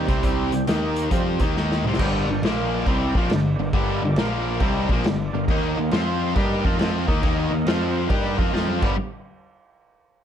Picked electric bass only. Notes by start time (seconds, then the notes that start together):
0.08 C2
0.24 C2
0.53 C2
0.68 D#2
1.12 F2
1.40 D#2
1.55 D#2
1.83 C2
1.99 G1
2.27 G1
2.42 A#1
2.87 C2
3.15 A#1
3.30 G1
3.58 G1
3.73 G1
4.02 G1
4.17 A#1
4.61 C2
4.89 A#1
5.04 G1
5.34 G1
5.48 D#2
5.78 D#2
5.93 F2
6.36 G2
6.65 F2
6.79 F2
7.08 D#2
7.23 D#2
7.51 D#2
7.66 F2
8.10 G2
8.39 F2
8.53 F2
8.82 G1